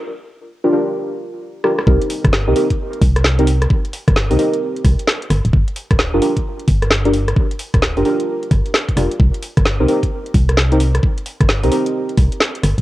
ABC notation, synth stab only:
X:1
M:4/4
L:1/16
Q:"Swing 16ths" 1/4=131
K:Cm
V:1 name="Synth stab"
z4 z [DFGB] [DFGB]8 [DFGB] z | [CEGB]4- [CEGB] [CEGB] [CEGB] z6 [CEGB] z2 | z4 z [CEGB] [CEGB]8 z2 | z4 z [DFGB] [DFGB] z6 [DFGB] z2 |
z4 z [DFGB] [DFGB]8 [DFGB] z | z4 z [CEGB] [CEGB] z6 [CEGB] z2 | z4 z [CEGB] [CEGB]8 z2 |]